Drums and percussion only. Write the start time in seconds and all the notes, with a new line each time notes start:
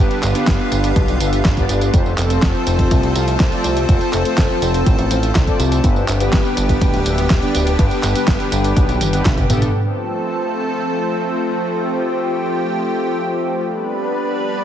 0.11 closed hi-hat, tambourine
0.23 clap, closed hi-hat, tambourine
0.35 closed hi-hat, tambourine
0.47 kick, snare, clap, closed hi-hat, tambourine
0.60 tambourine
0.72 closed hi-hat, tambourine
0.84 closed hi-hat, tambourine
0.96 kick, closed hi-hat, tambourine
1.08 closed hi-hat, tambourine
1.21 closed hi-hat, tambourine
1.33 closed hi-hat, tambourine
1.45 kick, snare, clap, closed hi-hat, tambourine
1.57 kick, closed hi-hat, tambourine
1.69 closed hi-hat, tambourine
1.81 closed hi-hat, tambourine
1.94 kick, closed hi-hat, tambourine
2.06 tambourine
2.18 clap, closed hi-hat, tambourine
2.30 closed hi-hat, tambourine
2.42 kick, snare, clap, closed hi-hat, tambourine
2.55 tambourine
2.67 closed hi-hat, tambourine
2.79 kick, closed hi-hat, tambourine
2.91 kick, closed hi-hat, tambourine
3.03 closed hi-hat, tambourine
3.16 closed hi-hat, tambourine
3.28 closed hi-hat, tambourine
3.40 kick, snare, clap, closed hi-hat, tambourine
3.52 closed hi-hat, tambourine
3.64 closed hi-hat, tambourine
3.77 closed hi-hat, tambourine
3.89 kick, closed hi-hat, tambourine
4.01 closed hi-hat, tambourine
4.13 clap, closed hi-hat, tambourine
4.25 closed hi-hat, tambourine
4.38 kick, snare, clap, closed hi-hat, tambourine
4.50 tambourine
4.62 closed hi-hat, tambourine
4.74 closed hi-hat, tambourine
4.86 kick, closed hi-hat, tambourine
4.99 closed hi-hat, tambourine
5.11 closed hi-hat, tambourine
5.23 closed hi-hat, tambourine
5.35 kick, snare, clap, closed hi-hat, tambourine
5.47 kick, closed hi-hat, tambourine
5.60 closed hi-hat, tambourine
5.72 closed hi-hat, tambourine
5.84 kick, closed hi-hat, tambourine
5.96 tambourine
6.08 clap, closed hi-hat, tambourine
6.20 closed hi-hat, tambourine
6.33 kick, snare, clap, closed hi-hat, tambourine
6.45 tambourine
6.57 closed hi-hat, tambourine
6.69 kick, closed hi-hat, tambourine
6.81 kick, closed hi-hat, tambourine
6.94 closed hi-hat, tambourine
7.06 closed hi-hat, tambourine
7.18 closed hi-hat, tambourine
7.30 kick, snare, clap, closed hi-hat, tambourine
7.42 closed hi-hat, tambourine
7.55 closed hi-hat, tambourine
7.67 closed hi-hat, tambourine
7.79 kick, closed hi-hat, tambourine
7.91 closed hi-hat, tambourine
8.03 clap, closed hi-hat, tambourine
8.16 closed hi-hat, tambourine
8.28 kick, snare, clap, closed hi-hat, tambourine
8.40 closed hi-hat, tambourine
8.52 closed hi-hat, tambourine
8.64 closed hi-hat, tambourine
8.76 kick, closed hi-hat, tambourine
8.89 closed hi-hat, tambourine
9.01 closed hi-hat, high tom, tambourine
9.13 closed hi-hat, tambourine
9.25 kick, snare, clap, closed hi-hat, mid tom, tambourine
9.37 kick, closed hi-hat, mid tom, tambourine
9.50 closed hi-hat, mid tom, tambourine
9.62 closed hi-hat, mid tom, tambourine